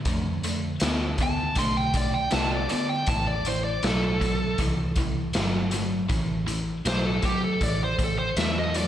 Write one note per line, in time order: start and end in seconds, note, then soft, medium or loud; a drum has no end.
0.05 0.79 F2 medium
0.05 0.41 D3 medium
0.05 0.41 A3 loud
0.05 kick loud
0.05 closed hi-hat medium
0.43 0.78 D3 medium
0.43 0.79 A3 medium
0.43 closed hi-hat medium
0.80 1.55 D2 medium
0.80 1.16 D3 medium
0.80 1.17 B3 medium
0.80 snare loud
0.80 closed hi-hat medium
1.18 1.54 D3 medium
1.18 1.54 B3 medium
1.18 kick medium
1.18 closed hi-hat medium
1.23 1.58 A5 loud
1.55 2.30 B1 medium
1.55 1.91 D3 medium
1.55 1.92 A3 loud
1.55 1.76 C6 loud
1.55 kick medium
1.55 closed hi-hat medium
1.77 1.95 G5 medium
1.94 2.29 D3 medium
1.94 2.29 A3 medium
1.94 2.14 D5 medium
1.94 kick medium
1.94 closed hi-hat medium
2.14 2.32 G5 medium
2.31 2.68 C2 medium
2.31 2.66 D3 medium
2.31 2.66 B3 loud
2.31 2.51 A5 medium
2.31 snare loud
2.31 closed hi-hat medium
2.52 2.69 D5 medium
2.69 3.04 D3 medium
2.69 3.05 B3 medium
2.69 2.88 D5 medium
2.69 muted fingered electric bass stroke soft
2.69 closed hi-hat medium
2.89 3.07 G5 medium
3.06 3.81 A1 medium
3.06 3.42 A2 medium
3.06 3.43 E3 medium
3.06 3.26 A5 medium
3.06 kick loud
3.06 closed hi-hat medium
3.27 3.48 D5 medium
3.45 3.80 A2 medium
3.45 3.80 E3 medium
3.45 3.64 C5 medium
3.45 closed hi-hat medium
3.64 3.83 D5 medium
3.83 4.57 B1 medium
3.83 4.17 A2 medium
3.83 4.18 F#3 medium
3.83 snare loud
3.83 closed hi-hat medium
3.87 4.58 A4 medium
4.20 4.54 A2 medium
4.20 4.55 F#3 medium
4.20 kick medium
4.20 closed hi-hat medium
4.58 5.32 C2 medium
4.58 4.93 A2 medium
4.58 4.93 E3 loud
4.58 kick medium
4.58 closed hi-hat medium
4.96 5.31 A2 medium
4.96 5.31 E3 medium
4.96 kick medium
4.96 closed hi-hat medium
5.33 6.08 G1 medium
5.33 5.69 A2 medium
5.33 5.69 F#3 medium
5.33 snare loud
5.33 closed hi-hat medium
5.71 6.06 A2 medium
5.71 6.06 F#3 medium
5.71 closed hi-hat medium
6.08 6.83 A1 medium
6.08 6.43 A2 medium
6.08 6.44 E3 medium
6.08 kick loud
6.08 closed hi-hat medium
6.46 6.81 A2 medium
6.46 6.81 E3 medium
6.46 closed hi-hat medium
6.85 7.21 B1 medium
6.85 7.19 A2 medium
6.85 7.20 F#3 medium
6.85 7.05 C5 medium
6.85 snare loud
6.85 closed hi-hat medium
7.05 7.23 A4 medium
7.22 7.57 A2 medium
7.22 7.58 F#3 medium
7.22 7.42 G4 medium
7.22 kick medium
7.22 closed hi-hat medium
7.44 7.61 A4 medium
7.61 8.35 A1 medium
7.61 7.95 A2 medium
7.61 7.95 E3 loud
7.61 7.80 D5 loud
7.61 kick medium
7.61 closed hi-hat medium
7.84 8.00 C5 medium
7.99 8.33 A2 medium
7.99 8.33 E3 medium
7.99 kick medium
7.99 closed hi-hat medium
8.04 8.18 A4 medium
8.19 8.36 C5 loud
8.37 8.88 E2 medium
8.37 8.72 A2 medium
8.37 8.71 F#3 medium
8.37 8.55 E5 medium
8.37 snare medium
8.37 closed hi-hat medium
8.59 8.76 D#5 medium
8.74 8.88 A2 medium
8.74 8.88 F#3 medium
8.74 8.88 D5 medium
8.74 closed hi-hat medium